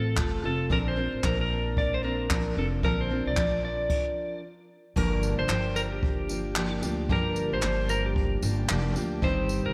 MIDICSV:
0, 0, Header, 1, 5, 480
1, 0, Start_track
1, 0, Key_signature, -2, "minor"
1, 0, Tempo, 532387
1, 637, Time_signature, 4, 2, 24, 8
1, 8776, End_track
2, 0, Start_track
2, 0, Title_t, "Electric slide guitar"
2, 0, Program_c, 0, 29
2, 0, Note_on_c, 0, 69, 92
2, 399, Note_off_c, 0, 69, 0
2, 410, Note_on_c, 0, 69, 87
2, 650, Note_off_c, 0, 69, 0
2, 653, Note_on_c, 0, 70, 88
2, 699, Note_off_c, 0, 70, 0
2, 793, Note_on_c, 0, 72, 90
2, 1128, Note_on_c, 0, 70, 83
2, 1132, Note_off_c, 0, 72, 0
2, 1263, Note_off_c, 0, 70, 0
2, 1274, Note_on_c, 0, 70, 89
2, 1604, Note_on_c, 0, 74, 84
2, 1613, Note_off_c, 0, 70, 0
2, 1748, Note_off_c, 0, 74, 0
2, 1751, Note_on_c, 0, 72, 89
2, 1835, Note_off_c, 0, 72, 0
2, 1844, Note_on_c, 0, 70, 86
2, 2329, Note_off_c, 0, 70, 0
2, 2333, Note_on_c, 0, 69, 76
2, 2396, Note_off_c, 0, 69, 0
2, 2565, Note_on_c, 0, 70, 94
2, 2709, Note_off_c, 0, 70, 0
2, 2711, Note_on_c, 0, 72, 80
2, 2949, Note_off_c, 0, 72, 0
2, 2952, Note_on_c, 0, 74, 92
2, 3278, Note_off_c, 0, 74, 0
2, 3288, Note_on_c, 0, 74, 84
2, 3967, Note_off_c, 0, 74, 0
2, 4488, Note_on_c, 0, 70, 93
2, 4858, Note_on_c, 0, 72, 101
2, 4878, Note_off_c, 0, 70, 0
2, 5194, Note_on_c, 0, 70, 98
2, 5206, Note_off_c, 0, 72, 0
2, 5239, Note_off_c, 0, 70, 0
2, 5341, Note_on_c, 0, 67, 77
2, 6061, Note_off_c, 0, 67, 0
2, 6423, Note_on_c, 0, 70, 98
2, 6794, Note_on_c, 0, 72, 107
2, 6805, Note_off_c, 0, 70, 0
2, 7122, Note_on_c, 0, 70, 100
2, 7133, Note_off_c, 0, 72, 0
2, 7267, Note_on_c, 0, 67, 74
2, 7268, Note_off_c, 0, 70, 0
2, 7948, Note_off_c, 0, 67, 0
2, 8331, Note_on_c, 0, 72, 106
2, 8681, Note_off_c, 0, 72, 0
2, 8708, Note_on_c, 0, 70, 99
2, 8776, Note_off_c, 0, 70, 0
2, 8776, End_track
3, 0, Start_track
3, 0, Title_t, "Steel-string acoustic guitar"
3, 0, Program_c, 1, 25
3, 0, Note_on_c, 1, 60, 34
3, 0, Note_on_c, 1, 65, 41
3, 0, Note_on_c, 1, 69, 44
3, 137, Note_off_c, 1, 60, 0
3, 140, Note_on_c, 1, 57, 59
3, 147, Note_off_c, 1, 65, 0
3, 148, Note_on_c, 1, 60, 65
3, 152, Note_off_c, 1, 69, 0
3, 158, Note_on_c, 1, 65, 65
3, 165, Note_on_c, 1, 69, 68
3, 370, Note_off_c, 1, 69, 0
3, 381, Note_on_c, 1, 69, 54
3, 384, Note_off_c, 1, 65, 0
3, 388, Note_off_c, 1, 57, 0
3, 392, Note_off_c, 1, 60, 0
3, 395, Note_on_c, 1, 65, 47
3, 405, Note_on_c, 1, 60, 46
3, 628, Note_off_c, 1, 60, 0
3, 628, Note_on_c, 1, 46, 74
3, 629, Note_off_c, 1, 69, 0
3, 633, Note_on_c, 1, 50, 64
3, 635, Note_off_c, 1, 65, 0
3, 638, Note_on_c, 1, 53, 74
3, 639, Note_on_c, 1, 60, 69
3, 642, Note_on_c, 1, 62, 79
3, 644, Note_on_c, 1, 70, 74
3, 853, Note_off_c, 1, 70, 0
3, 862, Note_off_c, 1, 62, 0
3, 864, Note_on_c, 1, 70, 51
3, 868, Note_off_c, 1, 60, 0
3, 872, Note_off_c, 1, 46, 0
3, 873, Note_on_c, 1, 62, 50
3, 875, Note_off_c, 1, 50, 0
3, 875, Note_off_c, 1, 53, 0
3, 879, Note_on_c, 1, 60, 48
3, 885, Note_on_c, 1, 53, 45
3, 1094, Note_off_c, 1, 53, 0
3, 1102, Note_off_c, 1, 60, 0
3, 1105, Note_on_c, 1, 53, 59
3, 1109, Note_off_c, 1, 62, 0
3, 1110, Note_off_c, 1, 70, 0
3, 1113, Note_on_c, 1, 60, 63
3, 1120, Note_on_c, 1, 62, 68
3, 1129, Note_on_c, 1, 70, 74
3, 1825, Note_off_c, 1, 70, 0
3, 1828, Note_on_c, 1, 70, 51
3, 1834, Note_off_c, 1, 62, 0
3, 1835, Note_off_c, 1, 60, 0
3, 1838, Note_on_c, 1, 62, 45
3, 1847, Note_on_c, 1, 60, 43
3, 1848, Note_off_c, 1, 53, 0
3, 1852, Note_on_c, 1, 53, 37
3, 2059, Note_off_c, 1, 53, 0
3, 2070, Note_off_c, 1, 60, 0
3, 2070, Note_on_c, 1, 53, 62
3, 2072, Note_off_c, 1, 70, 0
3, 2075, Note_off_c, 1, 62, 0
3, 2081, Note_on_c, 1, 60, 63
3, 2086, Note_on_c, 1, 62, 63
3, 2095, Note_on_c, 1, 70, 65
3, 2297, Note_off_c, 1, 70, 0
3, 2307, Note_on_c, 1, 70, 51
3, 2308, Note_off_c, 1, 62, 0
3, 2313, Note_off_c, 1, 53, 0
3, 2316, Note_off_c, 1, 60, 0
3, 2318, Note_on_c, 1, 62, 52
3, 2327, Note_on_c, 1, 60, 43
3, 2332, Note_on_c, 1, 53, 44
3, 2550, Note_off_c, 1, 60, 0
3, 2552, Note_off_c, 1, 53, 0
3, 2552, Note_off_c, 1, 70, 0
3, 2554, Note_on_c, 1, 46, 60
3, 2557, Note_off_c, 1, 62, 0
3, 2557, Note_on_c, 1, 50, 66
3, 2561, Note_on_c, 1, 60, 70
3, 2563, Note_on_c, 1, 53, 74
3, 2567, Note_on_c, 1, 62, 73
3, 2570, Note_on_c, 1, 70, 90
3, 2777, Note_off_c, 1, 70, 0
3, 2788, Note_off_c, 1, 62, 0
3, 2788, Note_on_c, 1, 70, 52
3, 2794, Note_off_c, 1, 60, 0
3, 2795, Note_off_c, 1, 46, 0
3, 2797, Note_off_c, 1, 50, 0
3, 2799, Note_off_c, 1, 53, 0
3, 2799, Note_on_c, 1, 62, 51
3, 2805, Note_on_c, 1, 60, 50
3, 2814, Note_on_c, 1, 53, 44
3, 3016, Note_off_c, 1, 53, 0
3, 3023, Note_off_c, 1, 60, 0
3, 3027, Note_on_c, 1, 53, 71
3, 3032, Note_off_c, 1, 62, 0
3, 3032, Note_off_c, 1, 70, 0
3, 3034, Note_on_c, 1, 60, 64
3, 3043, Note_on_c, 1, 62, 65
3, 3048, Note_on_c, 1, 70, 71
3, 3515, Note_off_c, 1, 60, 0
3, 3973, Note_off_c, 1, 53, 0
3, 3973, Note_off_c, 1, 62, 0
3, 3973, Note_off_c, 1, 70, 0
3, 4470, Note_on_c, 1, 43, 72
3, 4473, Note_on_c, 1, 50, 64
3, 4478, Note_on_c, 1, 53, 76
3, 4482, Note_on_c, 1, 58, 66
3, 4484, Note_on_c, 1, 67, 69
3, 4485, Note_on_c, 1, 62, 81
3, 4943, Note_off_c, 1, 53, 0
3, 4951, Note_off_c, 1, 58, 0
3, 4953, Note_off_c, 1, 43, 0
3, 4954, Note_on_c, 1, 53, 58
3, 4955, Note_off_c, 1, 50, 0
3, 4961, Note_off_c, 1, 62, 0
3, 4962, Note_on_c, 1, 58, 68
3, 4973, Note_on_c, 1, 62, 60
3, 4974, Note_off_c, 1, 67, 0
3, 4977, Note_on_c, 1, 67, 71
3, 5663, Note_off_c, 1, 67, 0
3, 5664, Note_off_c, 1, 62, 0
3, 5666, Note_on_c, 1, 67, 42
3, 5672, Note_off_c, 1, 58, 0
3, 5675, Note_on_c, 1, 62, 42
3, 5676, Note_off_c, 1, 53, 0
3, 5683, Note_on_c, 1, 58, 38
3, 5690, Note_on_c, 1, 53, 38
3, 5895, Note_off_c, 1, 53, 0
3, 5904, Note_off_c, 1, 58, 0
3, 5905, Note_on_c, 1, 53, 72
3, 5911, Note_off_c, 1, 62, 0
3, 5912, Note_off_c, 1, 67, 0
3, 5915, Note_on_c, 1, 58, 67
3, 5922, Note_on_c, 1, 62, 75
3, 5929, Note_on_c, 1, 67, 82
3, 6137, Note_off_c, 1, 67, 0
3, 6148, Note_off_c, 1, 62, 0
3, 6148, Note_on_c, 1, 67, 61
3, 6151, Note_off_c, 1, 53, 0
3, 6156, Note_off_c, 1, 58, 0
3, 6159, Note_on_c, 1, 62, 54
3, 6167, Note_on_c, 1, 58, 56
3, 6174, Note_on_c, 1, 53, 53
3, 6391, Note_off_c, 1, 53, 0
3, 6393, Note_off_c, 1, 58, 0
3, 6393, Note_off_c, 1, 67, 0
3, 6395, Note_on_c, 1, 43, 71
3, 6396, Note_off_c, 1, 62, 0
3, 6397, Note_on_c, 1, 50, 66
3, 6402, Note_on_c, 1, 53, 74
3, 6404, Note_on_c, 1, 58, 75
3, 6406, Note_on_c, 1, 62, 84
3, 6410, Note_on_c, 1, 67, 86
3, 6866, Note_off_c, 1, 53, 0
3, 6872, Note_off_c, 1, 58, 0
3, 6876, Note_off_c, 1, 43, 0
3, 6876, Note_on_c, 1, 53, 62
3, 6877, Note_off_c, 1, 50, 0
3, 6882, Note_off_c, 1, 62, 0
3, 6883, Note_on_c, 1, 58, 68
3, 6892, Note_on_c, 1, 62, 65
3, 6895, Note_off_c, 1, 67, 0
3, 6899, Note_on_c, 1, 67, 68
3, 7591, Note_off_c, 1, 67, 0
3, 7593, Note_off_c, 1, 62, 0
3, 7594, Note_on_c, 1, 67, 54
3, 7597, Note_off_c, 1, 53, 0
3, 7600, Note_off_c, 1, 58, 0
3, 7604, Note_on_c, 1, 62, 44
3, 7611, Note_on_c, 1, 58, 44
3, 7621, Note_on_c, 1, 53, 37
3, 7816, Note_off_c, 1, 53, 0
3, 7825, Note_off_c, 1, 58, 0
3, 7827, Note_on_c, 1, 53, 61
3, 7834, Note_off_c, 1, 62, 0
3, 7836, Note_off_c, 1, 67, 0
3, 7836, Note_on_c, 1, 58, 77
3, 7845, Note_on_c, 1, 62, 80
3, 7850, Note_on_c, 1, 67, 79
3, 8058, Note_off_c, 1, 67, 0
3, 8068, Note_off_c, 1, 62, 0
3, 8068, Note_on_c, 1, 67, 62
3, 8072, Note_off_c, 1, 53, 0
3, 8074, Note_off_c, 1, 58, 0
3, 8079, Note_on_c, 1, 62, 57
3, 8084, Note_on_c, 1, 58, 52
3, 8093, Note_on_c, 1, 53, 50
3, 8312, Note_on_c, 1, 43, 79
3, 8313, Note_off_c, 1, 67, 0
3, 8317, Note_on_c, 1, 51, 76
3, 8318, Note_off_c, 1, 53, 0
3, 8318, Note_off_c, 1, 62, 0
3, 8320, Note_off_c, 1, 58, 0
3, 8322, Note_on_c, 1, 55, 83
3, 8323, Note_on_c, 1, 60, 78
3, 8325, Note_on_c, 1, 63, 77
3, 8330, Note_on_c, 1, 67, 82
3, 8776, Note_off_c, 1, 43, 0
3, 8776, Note_off_c, 1, 51, 0
3, 8776, Note_off_c, 1, 55, 0
3, 8776, Note_off_c, 1, 60, 0
3, 8776, Note_off_c, 1, 63, 0
3, 8776, Note_off_c, 1, 67, 0
3, 8776, End_track
4, 0, Start_track
4, 0, Title_t, "Upright bass"
4, 0, Program_c, 2, 32
4, 0, Note_on_c, 2, 33, 100
4, 136, Note_off_c, 2, 33, 0
4, 156, Note_on_c, 2, 31, 83
4, 377, Note_off_c, 2, 31, 0
4, 394, Note_on_c, 2, 29, 90
4, 616, Note_off_c, 2, 29, 0
4, 633, Note_on_c, 2, 34, 83
4, 988, Note_off_c, 2, 34, 0
4, 1016, Note_on_c, 2, 33, 72
4, 1106, Note_off_c, 2, 33, 0
4, 1115, Note_on_c, 2, 34, 100
4, 2280, Note_off_c, 2, 34, 0
4, 2315, Note_on_c, 2, 29, 84
4, 2537, Note_off_c, 2, 29, 0
4, 2554, Note_on_c, 2, 34, 92
4, 2908, Note_off_c, 2, 34, 0
4, 2939, Note_on_c, 2, 36, 68
4, 3037, Note_off_c, 2, 36, 0
4, 3037, Note_on_c, 2, 34, 91
4, 3493, Note_off_c, 2, 34, 0
4, 4477, Note_on_c, 2, 31, 106
4, 4830, Note_off_c, 2, 31, 0
4, 4859, Note_on_c, 2, 29, 73
4, 4945, Note_off_c, 2, 29, 0
4, 4950, Note_on_c, 2, 31, 92
4, 6117, Note_off_c, 2, 31, 0
4, 6156, Note_on_c, 2, 38, 84
4, 6377, Note_off_c, 2, 38, 0
4, 6397, Note_on_c, 2, 31, 92
4, 6750, Note_off_c, 2, 31, 0
4, 6781, Note_on_c, 2, 33, 81
4, 6870, Note_off_c, 2, 33, 0
4, 6882, Note_on_c, 2, 31, 99
4, 7564, Note_off_c, 2, 31, 0
4, 7597, Note_on_c, 2, 31, 109
4, 7818, Note_off_c, 2, 31, 0
4, 7842, Note_on_c, 2, 29, 102
4, 8060, Note_off_c, 2, 29, 0
4, 8079, Note_on_c, 2, 38, 91
4, 8299, Note_off_c, 2, 38, 0
4, 8317, Note_on_c, 2, 31, 104
4, 8670, Note_off_c, 2, 31, 0
4, 8706, Note_on_c, 2, 29, 83
4, 8776, Note_off_c, 2, 29, 0
4, 8776, End_track
5, 0, Start_track
5, 0, Title_t, "Drums"
5, 152, Note_on_c, 9, 39, 102
5, 156, Note_on_c, 9, 36, 109
5, 243, Note_off_c, 9, 39, 0
5, 246, Note_off_c, 9, 36, 0
5, 632, Note_on_c, 9, 36, 96
5, 723, Note_off_c, 9, 36, 0
5, 1114, Note_on_c, 9, 36, 112
5, 1115, Note_on_c, 9, 39, 85
5, 1205, Note_off_c, 9, 36, 0
5, 1206, Note_off_c, 9, 39, 0
5, 1595, Note_on_c, 9, 36, 99
5, 1686, Note_off_c, 9, 36, 0
5, 2076, Note_on_c, 9, 39, 113
5, 2078, Note_on_c, 9, 36, 113
5, 2167, Note_off_c, 9, 39, 0
5, 2169, Note_off_c, 9, 36, 0
5, 2555, Note_on_c, 9, 36, 96
5, 2645, Note_off_c, 9, 36, 0
5, 3036, Note_on_c, 9, 36, 111
5, 3037, Note_on_c, 9, 39, 84
5, 3126, Note_off_c, 9, 36, 0
5, 3127, Note_off_c, 9, 39, 0
5, 3514, Note_on_c, 9, 49, 86
5, 3515, Note_on_c, 9, 36, 95
5, 3604, Note_off_c, 9, 49, 0
5, 3605, Note_off_c, 9, 36, 0
5, 4475, Note_on_c, 9, 36, 94
5, 4477, Note_on_c, 9, 49, 87
5, 4565, Note_off_c, 9, 36, 0
5, 4567, Note_off_c, 9, 49, 0
5, 4716, Note_on_c, 9, 54, 60
5, 4806, Note_off_c, 9, 54, 0
5, 4946, Note_on_c, 9, 39, 69
5, 4954, Note_off_c, 9, 39, 0
5, 4954, Note_on_c, 9, 39, 87
5, 5044, Note_off_c, 9, 39, 0
5, 5195, Note_on_c, 9, 54, 71
5, 5285, Note_off_c, 9, 54, 0
5, 5435, Note_on_c, 9, 36, 100
5, 5525, Note_off_c, 9, 36, 0
5, 5674, Note_on_c, 9, 54, 68
5, 5764, Note_off_c, 9, 54, 0
5, 5910, Note_on_c, 9, 39, 106
5, 5915, Note_off_c, 9, 39, 0
5, 5915, Note_on_c, 9, 39, 98
5, 6005, Note_off_c, 9, 39, 0
5, 6154, Note_on_c, 9, 54, 64
5, 6244, Note_off_c, 9, 54, 0
5, 6395, Note_on_c, 9, 36, 99
5, 6485, Note_off_c, 9, 36, 0
5, 6635, Note_on_c, 9, 54, 61
5, 6725, Note_off_c, 9, 54, 0
5, 6869, Note_on_c, 9, 39, 74
5, 6875, Note_off_c, 9, 39, 0
5, 6875, Note_on_c, 9, 39, 91
5, 6965, Note_off_c, 9, 39, 0
5, 7116, Note_on_c, 9, 54, 72
5, 7206, Note_off_c, 9, 54, 0
5, 7357, Note_on_c, 9, 36, 104
5, 7447, Note_off_c, 9, 36, 0
5, 7596, Note_on_c, 9, 54, 67
5, 7686, Note_off_c, 9, 54, 0
5, 7834, Note_on_c, 9, 39, 96
5, 7837, Note_off_c, 9, 39, 0
5, 7837, Note_on_c, 9, 39, 110
5, 7927, Note_off_c, 9, 39, 0
5, 8076, Note_on_c, 9, 54, 55
5, 8167, Note_off_c, 9, 54, 0
5, 8316, Note_on_c, 9, 36, 92
5, 8406, Note_off_c, 9, 36, 0
5, 8558, Note_on_c, 9, 54, 58
5, 8648, Note_off_c, 9, 54, 0
5, 8776, End_track
0, 0, End_of_file